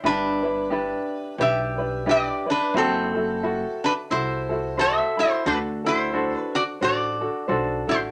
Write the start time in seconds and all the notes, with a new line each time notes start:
0.03 G1 D4 E4 G4 B4
0.43 D4 E4 B4
0.70 D4 E4 G4 B4
1.38 B1 D4 E4 G4 B4
1.42 E5
1.78 D4 E4 B4
2.06 D4 E4 G4 B4
2.11 D5
2.46 D4 E4 B4
2.51 B4
2.74 F#1 C4 E4 F#4 A4 C5
2.78 A4
3.14 E4 F#4 A4
3.43 E4 F#4 A4
3.84 D4 B4
4.10 C2 E4 F#4 A4 C5
4.49 E4 F#4 A4
4.77 E4 F#4 A4 C5 E5
5.17 E4 F#4 A4 C5
5.45 D2 D4 F#4 A4 B4
5.85 D4 E4 F#4 A4
5.89 C5
6.13 D4 F#4 A4 C5
6.37 B4
6.55 F#4 D5
6.81 A1 D4 F#4 A4 C5 D5
7.21 D4 F#4 A4
7.48 B1 D4 F#4 A4 C5
7.87 A1 D4 E4 F#4 A4 C5